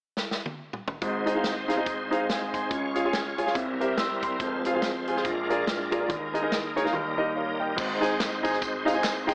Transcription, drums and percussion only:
0.17 snare
0.31 snare
0.46 high tom
0.73 mid tom
0.88 floor tom
1.01 kick, closed hi-hat
1.27 closed hi-hat
1.44 snare, closed hi-hat
1.69 snare, closed hi-hat
1.86 kick, closed hi-hat
2.12 closed hi-hat
2.30 snare, closed hi-hat
2.54 kick, closed hi-hat
2.71 kick, closed hi-hat
2.96 closed hi-hat
3.13 snare, closed hi-hat
3.38 closed hi-hat
3.47 snare
3.55 kick, closed hi-hat
3.81 closed hi-hat
3.98 snare, closed hi-hat
4.23 kick, closed hi-hat
4.40 kick, closed hi-hat
4.65 closed hi-hat
4.82 snare, closed hi-hat
5.07 closed hi-hat
5.16 snare
5.25 kick, closed hi-hat
5.50 closed hi-hat
5.67 snare, closed hi-hat
5.92 kick, closed hi-hat
6.10 kick, closed hi-hat
6.35 closed hi-hat
6.52 snare, closed hi-hat
6.77 closed hi-hat
6.86 snare
7.78 kick, crash, tambourine
8.03 closed hi-hat, tambourine
8.20 kick, snare, clap, closed hi-hat, tambourine
8.45 kick, closed hi-hat, tambourine
8.53 snare
8.62 kick, closed hi-hat, tambourine
8.88 closed hi-hat, tambourine
9.04 snare, clap, closed hi-hat, tambourine
9.29 kick, closed hi-hat, tambourine

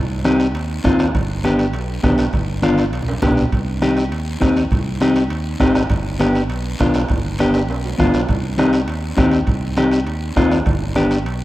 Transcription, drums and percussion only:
0.25 bombo rim, high conga, high timbale, short guiro
0.40 high timbale, short guiro
0.54 high conga, high timbale, long guiro
0.84 bombo low, bombo rim, high conga, high timbale, low timbale, short guiro
0.99 bombo rim, high timbale, short guiro
1.15 bombo low, high conga, high timbale, long guiro
1.44 bombo rim, high conga, high timbale, short guiro
1.59 high timbale, short guiro
1.73 high conga, high timbale, long guiro
2.04 bombo low, bombo rim, high conga, high timbale, low timbale, short guiro
2.18 bombo rim, high timbale, short guiro
2.33 bombo low, high conga, high timbale, long guiro
2.63 bombo rim, high conga, high timbale, short guiro
2.73 high conga
2.78 high timbale, short guiro
2.83 high conga
2.93 high timbale, long guiro
3.02 low conga
3.08 high timbale
3.12 low conga
3.22 bombo low, bombo rim, low conga, high timbale, short guiro
3.32 low conga
3.37 low timbale, short guiro
3.42 low conga
3.52 bombo low, high conga, high timbale, long guiro
3.81 bombo rim, high conga, high timbale, short guiro
3.97 high timbale, short guiro
4.12 high conga, high timbale, long guiro
4.41 bombo low, bombo rim, high conga, high timbale, low timbale, short guiro
4.57 high timbale, short guiro
4.71 bombo low, high conga, high timbale, long guiro
5.01 bombo rim, high conga, high timbale, short guiro
5.16 high timbale, short guiro
5.30 high conga, high timbale, long guiro
5.60 bombo low, bombo rim, high conga, high timbale, low timbale, short guiro
5.75 bombo rim, high timbale, short guiro
5.90 bombo low, high conga, high timbale, long guiro
6.20 bombo rim, high conga, high timbale, short guiro
6.35 high timbale, short guiro
6.50 high conga, high timbale, long guiro
6.79 bombo low, bombo rim, high conga, high timbale, short guiro
6.94 bombo rim, high timbale, short guiro
7.08 bombo low, high timbale, long guiro
7.39 bombo rim, high conga, high timbale, short guiro
7.54 high timbale, short guiro
7.69 high conga, high timbale, long guiro
7.85 low timbale
7.99 bombo low, bombo rim, high conga, low timbale, short guiro
8.14 bombo rim, low timbale, short guiro
8.29 bombo low, high conga, high timbale, long guiro
8.58 bombo rim, high conga, high timbale, short guiro
8.73 high timbale, short guiro
8.88 high conga, high timbale, long guiro
9.18 bombo low, bombo rim, high conga, high timbale, low timbale, short guiro
9.31 high timbale, short guiro
9.47 bombo low, high timbale, long guiro
9.76 bombo rim, high conga, high timbale, short guiro
9.91 high timbale, short guiro
10.07 high conga, high timbale, long guiro
10.37 bombo low, bombo rim, high conga, high timbale, low timbale, short guiro
10.51 bombo rim, high timbale, short guiro
10.66 bombo low, high conga, high timbale, long guiro
10.96 bombo rim, high conga, high timbale, short guiro
11.11 high timbale, short guiro
11.26 high conga, high timbale, long guiro

